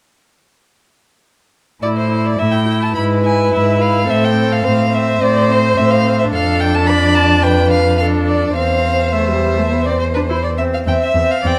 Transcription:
1.82 cello A2, viola E4, violin D5
1.97 violin C5
2.11 viola E4
2.26 violin D5
2.39 cello A2, viola E4, violin E5
2.51 violin G5
2.68 viola E4
2.82 violin A5
2.95 cello G#2, viola E4, violin B4 B5
3.24 viola E4, violin G#5
3.52 cello G#2, viola E4, violin E5
3.80 viola E4, violin F5
4.07 cello A2, viola C4, violin A4 E5
4.24 violin G5
4.36 viola C4
4.52 violin F5
4.64 cello A2, viola C4, violin C5
4.92 viola C4, violin E5
5.21 cello A2, viola C4, violin D5
5.49 viola C4, violin C5
5.77 cello A2, viola C4, violin E5
5.91 violin F5
6.04 viola C4
6.19 violin E5
6.31 cello F2, viola D4, violin A4 F5
6.60 violin G5
6.74 violin A5
6.87 violin D5 B5
7.15 violin A5
7.42 violin B4 G5
7.71 violin F5
7.98 viola D4, violin A4 F5
8.27 violin D5
8.56 cello E2, viola C4, violin C5 F5
9.12 viola A3, violin E5
9.28 viola G3
9.58 viola A3
9.71 viola B3
9.85 viola C4, violin D5
9.99 violin C5
10.14 viola D4, violin B4
10.29 viola E4, violin C5
10.44 violin D5
10.58 viola C4, violin E5
10.74 violin F5
10.86 cello E2, viola C4, violin E5 G5
11.03 violin E5
11.15 cello E2, viola C4
11.31 violin F5
11.44 cello E2, viola C4, violin D5 G5

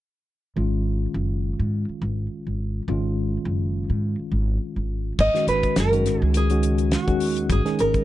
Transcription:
0.56 upright bass G#1, tine electric piano D#3 G#3 C#4 F4
1.14 upright bass F#1
1.59 upright bass G#2
1.89 muted upright bass stroke
2.02 upright bass G#1
2.47 upright bass G#1
2.88 upright bass G#1, tine electric piano D#3 G#3 C#4 F4
3.45 upright bass F#1
3.90 upright bass G#2
4.19 muted upright bass stroke
4.32 upright bass G#1
4.76 upright bass G#1
5.19 upright bass G#1, nylon-string guitar D#5, kick, crash
5.34 tine electric piano D#3 G#3 C#4 F#4, snare, closed hi-hat
5.47 upright bass G#1, nylon-string guitar B4, closed hi-hat
5.63 kick, closed hi-hat
5.76 upright bass F#1, nylon-string guitar A#4, snare, closed hi-hat
5.92 tine electric piano D#3 G#3 C#4 F#4, closed hi-hat
6.06 upright bass G#1, snare, closed hi-hat
6.21 upright bass C#2, nylon-string guitar G#4
6.34 nylon-string guitar G#4, closed hi-hat
6.50 tine electric piano D#3 G#3 C#4 F#4, closed hi-hat
6.63 closed hi-hat
6.78 closed hi-hat
6.92 nylon-string guitar F#4, snare, closed hi-hat
7.07 upright bass D#2, tine electric piano D#3 G#3 C#4 F#4, kick, closed hi-hat
7.20 open hi-hat
7.37 closed hi-hat
7.50 upright bass G#1, nylon-string guitar G#4, kick, closed hi-hat
7.65 tine electric piano D#3 G#3 C#4 G#4, muted upright bass stroke, snare, closed hi-hat
7.79 upright bass G#1, nylon-string guitar A#4, closed hi-hat
7.94 kick, closed hi-hat

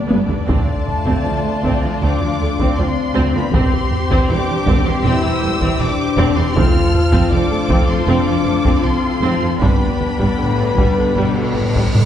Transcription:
Already playing: viola section D4, violin section G4 D5
0.08 double bass section G1, cello section G2, viola section B3, taiko high
0.27 cello section G2, viola section D3, taiko low
0.46 double bass section D2, cello section D2, french horn section A3, viola section C4, violin section F4 A5, taiko
0.68 taiko low
0.87 taiko low
1.05 cello section D2, viola section C4, taiko
1.24 double bass section D2, cello section D2, viola section F3
1.45 cello section D2, viola section A3
1.63 double bass section D2, cello section D2, viola section C4, taiko
1.83 cello section D2, viola section F3
2.02 cello section D2, double bass section D2, viola section C4, french horn section D4, violin section D6
2.20 cello section D2, viola section F3
2.40 double bass section D2, cello section D2, viola section A3
2.59 cello section D2, viola section C4, taiko
2.78 cello section D2, double bass section D2, viola section F3, french horn section C4, violin section C6
3.15 double bass section D2, cello section D2, viola section C4
3.34 cello section D2, viola section F3, french horn section B3, violin section B5
3.52 double bass section E1, cello section E2, french horn section C4, viola section C4 G4, violin section G4 C5 C6, taiko
3.73 taiko low
3.92 taiko low
4.11 cello section E2, viola section C4, taiko
4.29 double bass section E1, cello section E2, viola section E3, french horn section D4, violin section D6
4.48 cello section E2, viola section G3
4.66 double bass section E1, cello section E2, viola section C4, taiko
4.85 cello section E2, viola section E3, french horn section C4, violin section C6
5.03 double bass section E1, cello section E2, viola section C4, french horn section E4, violin section E6
5.22 cello section E2, viola section E3
5.42 double bass section E1, cello section E2, viola section G3
5.61 cello section E2, viola section C4, taiko
5.79 double bass section E1, cello section E2, viola section E3, french horn section D4, violin section D6
6.17 double bass section E1, cello section E2, viola section C4
6.37 cello section E2, viola section E3, french horn section C4, violin section C6
6.55 double bass section F1, cello section F2, viola section C4 F4, french horn section F4, violin section A4 F6, taiko
6.76 taiko low
6.94 taiko low
7.12 cello section F2, viola section C4, taiko
7.31 double bass section F1, cello section F2, viola section F3, french horn section D4, violin section D6
7.50 cello section F2, viola section A3
7.69 double bass section F1, cello section F2, viola section C4, taiko
7.88 cello section F2, viola section F3, french horn section C4, violin section C6
8.06 double bass section F1, cello section F2, viola section C4, french horn section D4, violin section D6
8.26 cello section F2, viola section F3
8.45 double bass section F1, cello section F2, viola section A3
8.64 cello section F2, viola section C4, taiko
8.83 double bass section F1, cello section F2, viola section F3, french horn section C4, violin section C6
9.22 double bass section F1, cello section F2, viola section C4
9.42 cello section F2, viola section F3
9.61 double bass section G1, cello section G2, viola section G3 D4, french horn section B3, violin section G4 B4 B5, taiko, cymbal swell
9.81 taiko low
10.01 taiko low
10.19 cello section G2, viola section G3, taiko
10.38 double bass section G1, cello section A2, viola section D3
10.58 viola section D3
10.77 double bass section G1, cello section G2, viola section G3, taiko
10.97 viola section D3
11.16 double bass section G1, cello section B2, viola section G3
11.37 viola section D3
11.55 double bass section G1, cello section A2, viola section D3
11.74 viola section G3, taiko
11.94 double bass section G1, cello section G2, viola section D3, taiko low-mid

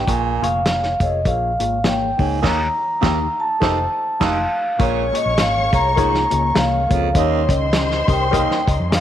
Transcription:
0.07 fingered electric bass A#1, baritone saxophone A#2, reed electric piano A#2 A#3 F4 G#4 C#5, vibraphone G#5, kick, closed hi-hat
0.42 fingered electric bass F1, reed electric piano A#3 F4 G#4 C#5, vibraphone F5, closed hi-hat
0.66 reed electric piano A#3 F4 G#4 C#5, snare, closed hi-hat
0.83 snare
1.00 fingered electric bass F1, reed electric piano A#3 F4 G#4 C#5, vibraphone D#5, kick, closed hi-hat
1.25 fingered electric bass A#1, reed electric piano A#3 F4 G#4 C#5, vibraphone F5, kick, closed hi-hat
1.59 fingered electric bass G#1, reed electric piano A#3 F4 G#4 C#5, closed hi-hat
1.84 reed electric piano A#3 F4 G#4 C#5, snare, closed hi-hat
1.88 vibraphone G5
2.17 fingered electric bass C#2, baritone saxophone G#2, reed electric piano A#3 F4 G#4 C#5, kick, open hi-hat
2.21 vibraphone G#5
2.42 baritone saxophone D#2, fingered electric bass D#2, reed electric piano D#3 A#3 D#4 G4 C#5, vibraphone A#5, kick, snare, crash
3.01 baritone saxophone D#2, fingered electric bass D#2, reed electric piano A#3 D#4 G4 C#5, kick, snare
3.40 vibraphone A5
3.60 fingered electric bass F1, baritone saxophone D#2, reed electric piano A3 D#4 F4 C5, kick, snare
4.20 fingered electric bass F1, baritone saxophone D#2, reed electric piano A3 D#4 F4 C5, vibraphone F5, kick, snare, crash
4.78 fingered electric bass A#1, baritone saxophone A#2, reed electric piano A#2 A#3 F4 G#4 C#5, tonewheel organ G#3 A#3 C#4, string section C#5 C#6, vibraphone C#5, kick, closed hi-hat
5.12 reed electric piano A#3 F4 G#4 C#5, vibraphone D#5, closed hi-hat
5.26 fingered electric bass A#1
5.38 fingered electric bass G#1, reed electric piano A#3 F4 G#4 C#5, vibraphone F5, snare, closed hi-hat
5.72 fingered electric bass C2, reed electric piano A#3 F4 G#4 C#5, vibraphone A#5, kick, closed hi-hat
5.96 baritone saxophone G#2, reed electric piano A#3 F4 G#4 C#5, kick, closed hi-hat
6.14 snare
6.30 fingered electric bass C#2, reed electric piano A#3 F4 G#4 C#5, closed hi-hat
6.54 fingered electric bass C2, reed electric piano A#3 F4 G#4 C#5, vibraphone F5, snare, closed hi-hat
6.89 fingered electric bass C#2, baritone saxophone F2, reed electric piano A#3 F4 G#4 C#5, kick, closed hi-hat
7.14 fingered electric bass D#2, baritone saxophone D#2, reed electric piano D#3 C#4 G4 A#4 D#5, tonewheel organ G3 D#4, string section C5 C6, vibraphone C#5, kick, closed hi-hat
7.49 fingered electric bass C#2, reed electric piano C#4 G4 A#4 D#5, kick, closed hi-hat
7.53 vibraphone D#5
7.73 reed electric piano C#4 G4 A#4 D#5, snare, closed hi-hat
7.91 snare
8.07 fingered electric bass C2, reed electric piano C#4 G4 A#4 D#5, kick, closed hi-hat
8.12 vibraphone G5
8.31 baritone saxophone D#2, reed electric piano C#4 G4 A#4 D#5, kick, closed hi-hat
8.51 snare
8.67 fingered electric bass C#2, reed electric piano C#4 G4 A#4 D#5, kick, closed hi-hat
8.79 fingered electric bass F2
8.90 reed electric piano C#4 G4 A#4 D#5, vibraphone F5, snare, closed hi-hat

